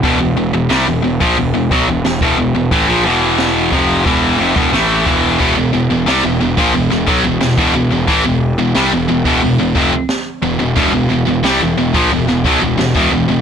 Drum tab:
HH |o---o---o---o---|o---o---o---o---|o---o---o---o---|o---o---o---o---|
SD |----o-------o---|----o-------o---|----o----o--o---|----o-------o---|
BD |o------o--o--o--|o-----o-o--o--o-|o------o--o--o--|o------o--o-----|

HH |o---o---o---o---|
SD |----o----o--o---|
BD |o------o--o--o--|